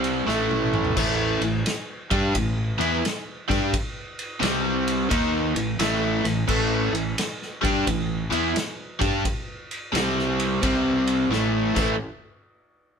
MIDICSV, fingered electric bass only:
0, 0, Header, 1, 3, 480
1, 0, Start_track
1, 0, Tempo, 689655
1, 672, Time_signature, 4, 2, 24, 8
1, 9045, End_track
2, 0, Start_track
2, 0, Title_t, "Fingered electric bass"
2, 0, Program_c, 0, 33
2, 0, Note_on_c, 0, 36, 93
2, 163, Note_off_c, 0, 36, 0
2, 186, Note_on_c, 0, 33, 89
2, 642, Note_off_c, 0, 33, 0
2, 678, Note_on_c, 0, 33, 89
2, 969, Note_off_c, 0, 33, 0
2, 984, Note_on_c, 0, 33, 70
2, 1140, Note_off_c, 0, 33, 0
2, 1471, Note_on_c, 0, 43, 97
2, 1624, Note_off_c, 0, 43, 0
2, 1640, Note_on_c, 0, 33, 89
2, 1931, Note_off_c, 0, 33, 0
2, 1941, Note_on_c, 0, 40, 96
2, 2099, Note_off_c, 0, 40, 0
2, 2436, Note_on_c, 0, 43, 98
2, 2587, Note_off_c, 0, 43, 0
2, 3078, Note_on_c, 0, 36, 93
2, 3529, Note_off_c, 0, 36, 0
2, 3559, Note_on_c, 0, 39, 101
2, 3851, Note_off_c, 0, 39, 0
2, 3861, Note_on_c, 0, 33, 85
2, 4020, Note_off_c, 0, 33, 0
2, 4031, Note_on_c, 0, 33, 94
2, 4326, Note_off_c, 0, 33, 0
2, 4347, Note_on_c, 0, 33, 84
2, 4502, Note_off_c, 0, 33, 0
2, 4516, Note_on_c, 0, 33, 93
2, 4809, Note_off_c, 0, 33, 0
2, 4821, Note_on_c, 0, 33, 80
2, 4979, Note_off_c, 0, 33, 0
2, 5311, Note_on_c, 0, 43, 98
2, 5465, Note_off_c, 0, 43, 0
2, 5482, Note_on_c, 0, 33, 90
2, 5771, Note_off_c, 0, 33, 0
2, 5790, Note_on_c, 0, 40, 103
2, 5943, Note_off_c, 0, 40, 0
2, 6272, Note_on_c, 0, 43, 97
2, 6424, Note_off_c, 0, 43, 0
2, 6915, Note_on_c, 0, 36, 95
2, 7365, Note_off_c, 0, 36, 0
2, 7400, Note_on_c, 0, 36, 100
2, 7847, Note_off_c, 0, 36, 0
2, 7861, Note_on_c, 0, 33, 86
2, 8157, Note_off_c, 0, 33, 0
2, 8184, Note_on_c, 0, 33, 95
2, 8337, Note_off_c, 0, 33, 0
2, 9045, End_track
3, 0, Start_track
3, 0, Title_t, "Muted fingered electric bass strokes"
3, 2120, Note_on_c, 9, 29, 38
3, 2189, Note_off_c, 9, 29, 0
3, 5965, Note_on_c, 9, 29, 42
3, 6035, Note_off_c, 9, 29, 0
3, 9045, End_track
0, 0, End_of_file